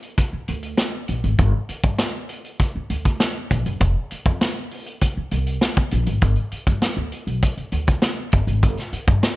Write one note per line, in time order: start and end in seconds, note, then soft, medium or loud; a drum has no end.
0.02 closed hi-hat soft
0.18 kick loud
0.18 closed hi-hat medium
0.33 muted upright bass stroke medium
0.48 0.72 D2 medium
0.48 closed hi-hat medium
0.63 closed hi-hat medium
0.78 snare loud
0.78 closed hi-hat medium
1.08 1.21 A#1 medium
1.08 closed hi-hat medium
1.24 1.36 G#1 medium
1.24 closed hi-hat medium
1.39 1.51 G1 loud
1.39 kick loud
1.39 closed hi-hat medium
1.69 muted upright bass stroke soft
1.69 closed hi-hat medium
1.84 1.96 G2 medium
1.84 kick loud
1.84 closed hi-hat medium
1.98 snare loud
1.98 closed hi-hat loud
2.29 closed hi-hat medium
2.44 closed hi-hat soft
2.59 kick medium
2.59 closed hi-hat medium
2.76 muted upright bass stroke medium
2.90 3.14 D2 medium
2.90 closed hi-hat medium
3.05 kick medium
3.05 closed hi-hat medium
3.20 snare loud
3.20 closed hi-hat loud
3.51 3.63 A#1 medium
3.51 kick medium
3.51 closed hi-hat medium
3.66 3.78 F#1 medium
3.66 closed hi-hat medium
3.81 3.93 F1 loud
3.81 kick loud
3.81 closed hi-hat medium
4.11 muted upright bass stroke soft
4.11 closed hi-hat medium
4.26 4.38 F2 loud
4.26 kick loud
4.26 closed hi-hat medium
4.41 snare loud
4.41 closed hi-hat loud
4.57 closed hi-hat soft
4.71 open hi-hat medium
4.86 closed hi-hat medium
5.01 kick medium
5.01 closed hi-hat loud
5.17 muted upright bass stroke medium
5.31 5.56 C2 medium
5.31 closed hi-hat medium
5.46 closed hi-hat medium
5.61 snare loud
5.61 closed hi-hat medium
5.77 kick loud
5.77 closed hi-hat soft
5.91 6.04 A#1 medium
5.91 closed hi-hat medium
6.06 6.19 G#1 medium
6.06 closed hi-hat medium
6.21 6.34 G1 loud
6.21 kick loud
6.21 closed hi-hat medium
6.36 closed hi-hat soft
6.52 muted upright bass stroke soft
6.52 closed hi-hat medium
6.67 6.79 G2 medium
6.67 kick loud
6.67 closed hi-hat medium
6.82 snare loud
6.82 closed hi-hat loud
6.97 7.09 D2 medium
7.12 closed hi-hat medium
7.27 7.39 B1 medium
7.27 closed hi-hat soft
7.42 kick medium
7.42 closed hi-hat loud
7.57 muted upright bass stroke soft
7.57 closed hi-hat soft
7.72 7.96 D2 medium
7.72 closed hi-hat medium
7.87 kick medium
7.87 closed hi-hat medium
8.02 snare loud
8.02 closed hi-hat medium
8.32 8.45 G1 medium
8.32 kick loud
8.32 closed hi-hat medium
8.47 8.63 G#1 medium
8.47 closed hi-hat medium
8.63 8.75 G1 loud
8.63 kick loud
8.63 closed hi-hat medium
8.77 snare soft
8.77 closed hi-hat soft
8.93 muted upright bass stroke soft
8.93 closed hi-hat medium
9.07 9.20 G2 medium
9.07 kick loud
9.07 closed hi-hat soft
9.23 snare loud
9.23 closed hi-hat loud